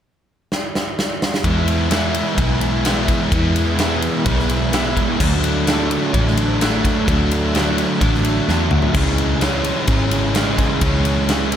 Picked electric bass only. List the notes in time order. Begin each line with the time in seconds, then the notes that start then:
1.44 E2
2.38 B1
3.32 E2
4.26 B1
5.20 D2
6.14 A1
7.08 D2
8.01 A1
8.48 E2
8.72 D2
8.95 C#2
9.88 G#1
10.82 C#2